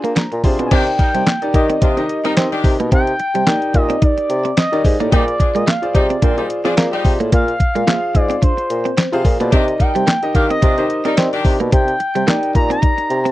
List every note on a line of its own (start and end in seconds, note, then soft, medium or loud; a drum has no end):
0.00 0.13 A#3 medium
0.00 0.22 D4 medium
0.00 0.22 F4 medium
0.00 0.22 G#4 medium
0.00 0.25 C5 loud
0.00 0.15 G#5 medium
0.04 0.14 A#3 medium
0.04 closed hi-hat medium
0.16 0.27 A#3 medium
0.16 0.42 A#5 medium
0.16 snare loud
0.16 clap medium
0.16 closed hi-hat medium
0.32 0.41 A#2 medium
0.32 muted clean electric guitar stroke soft
0.32 closed hi-hat soft
0.44 0.56 C3 medium
0.44 0.66 D4 medium
0.44 0.67 F4 medium
0.44 0.67 G#4 medium
0.44 0.67 C5 medium
0.44 0.70 C6 medium
0.44 kick loud
0.44 open hi-hat medium
0.59 0.69 B2 medium
0.59 0.68 C4 medium
0.59 closed hi-hat medium
0.66 0.75 G#5 medium
0.71 0.92 C3 loud
0.71 0.84 D#3 loud
0.71 0.82 C4 medium
0.71 0.84 D4 loud
0.71 1.26 D#4 medium
0.71 1.26 G4 medium
0.71 0.84 G4 loud
0.71 1.26 A#4 medium
0.71 1.26 D5 medium
0.71 1.55 G5 loud
0.71 kick loud
0.71 closed hi-hat loud
0.71 crash loud
0.87 closed hi-hat soft
0.99 1.11 G3 medium
0.99 1.11 D#4 medium
0.99 1.11 A#4 medium
0.99 muted clean electric guitar stroke soft
0.99 kick medium
0.99 closed hi-hat medium
1.14 1.24 C3 loud
1.14 1.23 G3 medium
1.14 closed hi-hat medium
1.26 1.38 A#3 medium
1.26 snare loud
1.26 clap loud
1.26 closed hi-hat medium
1.42 1.84 D#4 medium
1.42 1.84 G4 medium
1.42 1.84 A#4 medium
1.42 1.84 D5 medium
1.42 closed hi-hat soft
1.54 1.75 D#3 loud
1.54 1.67 D#3 medium
1.54 1.66 D4 medium
1.54 1.66 G4 loud
1.54 1.69 D#5 medium
1.54 muted clean electric guitar stroke soft
1.54 kick loud
1.54 closed hi-hat medium
1.70 1.78 C4 medium
1.70 2.49 D#5 medium
1.70 closed hi-hat medium
1.81 2.03 C3 loud
1.81 1.94 F3 medium
1.81 1.94 D4 medium
1.81 1.93 D#4 medium
1.81 1.94 F4 loud
1.81 kick loud
1.81 closed hi-hat medium
1.97 2.07 D#3 medium
1.97 2.07 D4 medium
1.97 2.18 D#4 medium
1.97 2.18 G4 medium
1.97 2.07 G4 medium
1.97 2.18 A#4 medium
1.97 2.19 D#5 medium
1.97 muted clean electric guitar stroke medium
1.97 closed hi-hat soft
2.09 closed hi-hat medium
2.24 2.34 G3 loud
2.24 2.33 C4 medium
2.24 3.11 D#4 medium
2.24 2.34 D#4 loud
2.24 3.11 G4 medium
2.24 2.34 A#4 loud
2.24 3.11 A#4 medium
2.24 3.12 D#5 loud
2.24 closed hi-hat medium
2.37 2.48 C4 loud
2.37 2.48 C4 medium
2.37 snare loud
2.37 clap medium
2.37 closed hi-hat loud
2.52 2.74 D#3 loud
2.52 2.74 D4 loud
2.52 2.74 G4 loud
2.52 muted clean electric guitar stroke soft
2.52 closed hi-hat soft
2.64 2.76 C3 medium
2.64 kick loud
2.64 open hi-hat medium
2.80 2.89 B2 medium
2.80 2.88 A#3 medium
2.80 closed hi-hat medium
2.92 3.13 C3 loud
2.92 3.03 C4 medium
2.92 3.77 G5 loud
2.92 kick loud
2.92 closed hi-hat loud
3.07 closed hi-hat soft
3.19 muted clean electric guitar stroke soft
3.19 closed hi-hat medium
3.35 3.44 C3 medium
3.35 3.44 G3 medium
3.35 closed hi-hat medium
3.46 3.58 A#3 medium
3.46 4.34 D#4 medium
3.46 4.34 G4 medium
3.46 4.35 A#4 medium
3.46 4.35 D5 medium
3.46 snare loud
3.46 clap medium
3.46 closed hi-hat medium
3.62 closed hi-hat soft
3.74 3.95 A#2 loud
3.74 4.04 D#5 loud
3.74 muted clean electric guitar stroke soft
3.74 kick loud
3.74 closed hi-hat medium
3.90 3.98 C4 medium
3.90 closed hi-hat medium
4.02 4.13 D#4 medium
4.02 4.57 D5 loud
4.02 kick loud
4.02 closed hi-hat loud
4.18 muted clean electric guitar stroke soft
4.18 closed hi-hat soft
4.30 4.50 C3 medium
4.30 closed hi-hat medium
4.45 4.54 C4 medium
4.45 closed hi-hat medium
4.57 4.68 C4 medium
4.57 4.97 D#5 medium
4.57 snare loud
4.57 clap medium
4.57 closed hi-hat loud
4.72 4.82 D#3 medium
4.72 4.93 D#4 medium
4.72 4.94 G4 medium
4.72 4.94 A#4 medium
4.72 4.94 D5 loud
4.72 muted clean electric guitar stroke soft
4.72 closed hi-hat soft
4.84 4.96 G#2 medium
4.84 kick loud
4.84 open hi-hat medium
4.99 5.09 A2 medium
4.99 5.09 A#3 medium
4.99 5.09 D#4 medium
4.99 5.09 G4 medium
4.99 5.10 A#4 medium
4.99 5.10 D5 medium
4.99 closed hi-hat medium
5.12 5.33 A#2 loud
5.12 5.24 G3 loud
5.12 5.23 A#3 loud
5.12 5.24 D#4 loud
5.12 5.66 F4 medium
5.12 5.24 G4 loud
5.12 5.67 G#4 medium
5.12 5.67 C5 medium
5.12 5.67 D5 medium
5.12 5.57 D5 loud
5.12 kick loud
5.12 closed hi-hat loud
5.28 closed hi-hat soft
5.39 5.52 F3 medium
5.39 5.52 D4 medium
5.39 5.52 G#4 medium
5.39 muted clean electric guitar stroke soft
5.39 kick medium
5.39 closed hi-hat medium
5.55 5.64 A#2 medium
5.55 5.64 G#3 medium
5.55 5.69 D#5 medium
5.55 closed hi-hat medium
5.67 5.78 A#3 medium
5.67 5.95 F5 loud
5.67 snare loud
5.67 clap loud
5.67 closed hi-hat medium
5.82 6.25 F4 medium
5.82 6.25 G#4 medium
5.82 6.25 C5 medium
5.82 6.25 D5 medium
5.82 closed hi-hat soft
5.94 6.16 C3 loud
5.94 6.07 G3 medium
5.94 6.07 D#4 loud
5.94 6.07 G4 loud
5.94 6.46 D5 medium
5.94 muted clean electric guitar stroke soft
5.94 kick loud
5.94 closed hi-hat medium
6.10 6.19 C4 medium
6.10 closed hi-hat medium
6.22 6.43 A#2 loud
6.22 6.34 D3 medium
6.22 6.35 C4 medium
6.22 6.33 D4 medium
6.22 6.34 F4 loud
6.22 kick loud
6.22 closed hi-hat loud
6.37 6.47 G3 medium
6.37 6.47 D#4 medium
6.37 6.59 F4 medium
6.37 6.47 G4 medium
6.37 6.59 G#4 medium
6.37 6.59 C5 medium
6.37 6.59 D5 medium
6.37 muted clean electric guitar stroke soft
6.37 closed hi-hat soft
6.50 closed hi-hat medium
6.65 6.74 F3 loud
6.65 6.74 C4 medium
6.65 6.75 D4 loud
6.65 7.51 F4 loud
6.65 6.75 G#4 loud
6.65 7.52 G#4 loud
6.65 7.52 C5 loud
6.65 7.52 D5 loud
6.65 closed hi-hat medium
6.77 6.89 A#3 loud
6.77 6.88 C4 medium
6.77 snare loud
6.77 clap medium
6.77 closed hi-hat loud
6.92 7.14 G3 loud
6.92 7.14 D#4 loud
6.92 7.14 G4 loud
6.92 muted clean electric guitar stroke soft
6.92 closed hi-hat soft
7.05 7.16 C3 medium
7.05 kick loud
7.05 open hi-hat medium
7.20 7.29 A2 medium
7.20 7.29 A#3 medium
7.20 closed hi-hat medium
7.32 7.53 A#2 loud
7.32 7.43 A#3 loud
7.32 8.17 F5 loud
7.32 kick loud
7.32 closed hi-hat loud
7.48 closed hi-hat soft
7.60 muted clean electric guitar stroke soft
7.60 kick medium
7.60 closed hi-hat medium
7.75 7.84 A#2 medium
7.75 7.84 G#3 medium
7.75 closed hi-hat medium
7.87 7.98 A#3 medium
7.87 8.75 F4 medium
7.87 8.75 G#4 medium
7.87 8.75 C5 medium
7.87 7.95 E5 medium
7.87 snare loud
7.87 clap loud
7.87 closed hi-hat medium
7.94 8.78 F5 medium
8.15 8.36 G#2 loud
8.15 8.42 D5 loud
8.15 muted clean electric guitar stroke soft
8.15 kick loud
8.15 closed hi-hat medium
8.30 8.39 C4 medium
8.30 closed hi-hat medium
8.42 8.53 D4 medium
8.42 9.21 C5 medium
8.42 kick loud
8.42 closed hi-hat loud
8.57 muted clean electric guitar stroke soft
8.57 closed hi-hat soft
8.70 8.91 A#2 medium
8.70 closed hi-hat medium
8.85 8.94 C4 medium
8.85 closed hi-hat medium
8.97 9.08 C4 medium
8.97 snare loud
8.97 clap medium
8.97 closed hi-hat medium
9.12 9.22 C3 loud
9.12 9.34 F4 loud
9.12 9.34 G#4 loud
9.12 9.34 C5 loud
9.12 9.34 F5 loud
9.12 muted clean electric guitar stroke soft
9.12 closed hi-hat soft
9.25 9.37 A#2 medium
9.25 kick loud
9.25 open hi-hat medium
9.40 9.50 B2 medium
9.40 9.49 A#3 medium
9.40 9.50 F4 medium
9.40 9.50 G#4 medium
9.40 9.50 C5 medium
9.40 9.50 D5 medium
9.40 closed hi-hat medium
9.52 9.73 C3 loud
9.52 9.65 D#3 loud
9.52 9.63 C4 loud
9.52 9.65 D4 loud
9.52 10.07 D#4 medium
9.52 9.65 G4 loud
9.52 10.07 G4 medium
9.52 10.07 A#4 medium
9.52 10.07 D5 medium
9.52 9.82 D#5 loud
9.52 kick loud
9.52 closed hi-hat loud
9.68 closed hi-hat soft
9.79 9.92 G3 medium
9.79 9.92 D#4 medium
9.79 9.92 A#4 medium
9.79 10.35 G5 loud
9.79 muted clean electric guitar stroke soft
9.79 kick medium
9.79 closed hi-hat medium
9.95 10.05 C3 loud
9.95 10.04 G3 medium
9.95 closed hi-hat medium
10.07 10.18 A#3 medium
10.07 snare loud
10.07 clap loud
10.07 closed hi-hat medium
10.22 10.65 D#4 medium
10.22 10.65 G4 medium
10.22 10.65 A#4 medium
10.22 10.65 D#5 medium
10.22 closed hi-hat soft
10.35 10.56 D#3 medium
10.35 10.47 D#3 medium
10.35 10.47 D4 loud
10.35 10.47 G4 loud
10.35 10.49 F5 medium
10.35 muted clean electric guitar stroke soft
10.35 kick loud
10.35 closed hi-hat medium
10.50 10.59 C4 medium
10.50 11.29 D#5 medium
10.50 closed hi-hat medium
10.62 10.83 C3 loud
10.62 10.75 F3 medium
10.62 10.75 D4 medium
10.62 10.73 D#4 medium
10.62 10.75 F4 loud
10.62 kick loud
10.62 closed hi-hat loud
10.77 10.87 D#3 medium
10.77 10.87 D4 medium
10.77 10.99 D#4 medium
10.77 10.87 G4 medium
10.77 10.99 G4 medium
10.77 10.99 A#4 medium
10.77 10.99 C5 medium
10.77 muted clean electric guitar stroke soft
10.77 closed hi-hat soft
10.90 closed hi-hat medium
11.05 11.15 G3 loud
11.05 11.14 C4 medium
11.05 11.92 D#4 medium
11.05 11.15 D#4 loud
11.05 11.92 G4 medium
11.05 11.15 A#4 loud
11.05 11.92 A#4 medium
11.05 11.92 D5 loud
11.05 closed hi-hat medium
11.17 11.28 C4 loud
11.17 11.29 C4 loud
11.17 snare loud
11.17 clap medium
11.17 closed hi-hat loud
11.33 11.55 D#3 loud
11.33 11.55 D4 loud
11.33 11.55 G4 loud
11.33 muted clean electric guitar stroke soft
11.33 closed hi-hat soft
11.45 11.57 C3 medium
11.45 kick loud
11.45 open hi-hat medium
11.60 11.70 B2 medium
11.60 11.69 A#3 medium
11.60 closed hi-hat medium
11.72 11.93 C3 loud
11.72 11.83 C4 medium
11.72 12.51 G5 loud
11.72 kick loud
11.72 closed hi-hat loud
11.88 closed hi-hat soft
12.00 muted clean electric guitar stroke soft
12.00 closed hi-hat medium
12.15 12.25 C3 loud
12.15 12.24 G3 medium
12.15 closed hi-hat medium
12.27 12.38 A#3 medium
12.27 13.15 D#4 medium
12.27 13.15 G4 medium
12.27 13.15 A#4 medium
12.27 13.15 D5 medium
12.27 snare loud
12.27 clap medium
12.27 closed hi-hat medium
12.43 closed hi-hat soft
12.55 12.76 A#2 loud
12.55 12.70 A#5 loud
12.55 muted clean electric guitar stroke soft
12.55 kick loud
12.55 closed hi-hat medium
12.70 12.79 C4 medium
12.70 13.32 A#5 loud
12.70 closed hi-hat medium
12.82 12.93 D#4 medium
12.82 kick loud
12.82 closed hi-hat medium
12.98 muted clean electric guitar stroke soft
12.98 closed hi-hat soft
13.10 13.31 C3 loud
13.10 closed hi-hat medium
13.25 13.32 C4 medium
13.25 closed hi-hat medium